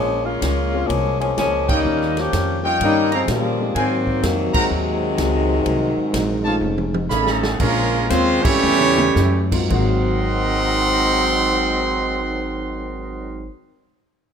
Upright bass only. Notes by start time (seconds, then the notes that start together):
Already playing: A#1
0.42 C#2
0.89 C2
1.37 C#2
1.85 D#2
2.33 F2
2.80 G2
3.28 A#2
3.75 G#2
4.23 F2
4.54 muted upright bass stroke
4.71 D#2
5.18 C#2
5.65 C2
5.97 muted upright bass stroke
6.13 A#1
6.61 F1
7.10 A1
7.60 A#1
8.10 D#2
8.63 E2
9.16 F#2
9.71 G#1